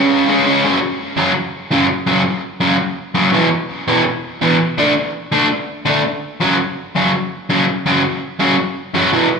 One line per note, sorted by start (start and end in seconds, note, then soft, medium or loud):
0.00 0.28 C#3 loud
0.00 0.28 G#3 medium
0.00 0.29 C#4 loud
0.29 0.45 C#3 medium
0.29 0.46 G#3 medium
0.29 0.46 C#4 medium
0.46 0.63 C#3 medium
0.46 0.63 G#3 loud
0.46 0.63 C#4 medium
0.64 0.78 F#2 loud
0.64 0.78 C#3 loud
0.64 0.79 F#3 loud
1.17 1.31 F#2 medium
1.17 1.32 C#3 medium
1.17 1.32 F#3 loud
1.71 1.86 F#2 medium
1.71 1.86 C#3 loud
1.71 1.86 F#3 medium
2.06 2.21 F#2 loud
2.06 2.22 C#3 loud
2.06 2.22 F#3 loud
2.60 2.75 F#2 medium
2.60 2.76 C#3 loud
2.60 2.76 F#3 medium
3.14 3.29 F#2 medium
3.14 3.30 C#3 loud
3.14 3.30 F#3 loud
3.33 3.48 E2 medium
3.33 3.48 B2 medium
3.33 3.48 E3 loud
3.88 4.02 E2 loud
3.88 4.02 B2 loud
3.88 4.03 E3 loud
4.42 4.56 E2 medium
4.42 4.57 B2 loud
4.42 4.57 E3 loud
4.78 4.92 D3 medium
4.78 4.93 A3 medium
4.78 4.93 D4 loud
5.32 5.47 D3 loud
5.32 5.47 A3 loud
5.32 5.47 D4 loud
5.85 6.01 D3 medium
5.85 6.01 A3 loud
5.85 6.01 D4 medium
6.40 6.55 F#2 loud
6.40 6.56 C#3 medium
6.40 6.56 F#3 loud
6.95 7.10 F#2 medium
6.95 7.10 C#3 medium
6.95 7.11 F#3 medium
7.50 7.64 F#2 medium
7.50 7.65 C#3 loud
7.50 7.65 F#3 medium
7.86 8.01 F#2 loud
7.86 8.01 C#3 loud
7.86 8.01 F#3 loud
8.40 8.55 F#2 medium
8.40 8.55 C#3 medium
8.40 8.56 F#3 loud
8.94 9.09 F#2 loud
8.94 9.09 C#3 medium
8.94 9.10 F#3 loud
9.13 9.28 E2 medium
9.13 9.28 B2 medium
9.13 9.28 E3 medium